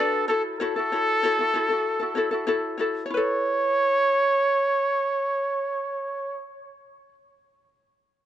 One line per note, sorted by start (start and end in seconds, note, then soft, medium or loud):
0.00 0.29 D4 medium
0.00 0.28 F#4 medium
0.00 0.28 A4 medium
0.00 0.28 B4 medium
0.00 0.29 D5 medium
0.28 0.60 E4 medium
0.28 0.60 F#4 soft
0.28 0.43 A4 medium
0.28 0.61 A4 medium
0.28 0.59 C#5 medium
0.59 0.76 E4 medium
0.59 0.76 F#4 medium
0.59 2.74 A4 medium
0.59 0.75 A4 medium
0.59 0.75 C#5 medium
0.76 0.92 E4 soft
0.76 0.92 F#4 soft
0.76 0.91 A4 soft
0.92 1.23 E4 soft
0.92 1.23 F#4 soft
0.92 1.24 A4 soft
0.92 1.22 C#5 soft
1.23 1.39 E4 medium
1.23 1.39 F#4 medium
1.23 1.38 A4 medium
1.23 1.38 C#5 medium
1.39 1.54 E4 soft
1.39 1.53 F#4 soft
1.39 1.54 A4 soft
1.54 1.69 E4 medium
1.54 1.70 F#4 medium
1.54 1.68 A4 medium
1.54 1.69 C#5 medium
1.69 2.00 E4 soft
1.69 2.01 F#4 soft
1.69 1.98 A4 soft
2.00 2.16 E4 soft
2.00 2.15 F#4 soft
2.00 2.16 A4 soft
2.15 2.31 E4 medium
2.15 2.32 F#4 medium
2.15 2.30 A4 medium
2.15 2.31 C#5 soft
2.31 2.46 E4 soft
2.31 2.46 F#4 soft
2.31 2.47 A4 soft
2.47 2.78 E4 medium
2.47 2.78 F#4 medium
2.47 2.79 A4 medium
2.47 2.76 C#5 medium
2.78 3.09 E4 medium
2.78 3.10 F#4 soft
2.78 3.05 A4 medium
2.78 3.04 C#5 soft
3.06 7.09 C#5 medium
3.10 7.11 E4 medium
3.10 7.13 B4 medium
3.10 6.37 C#5 medium
3.17 7.14 A4 medium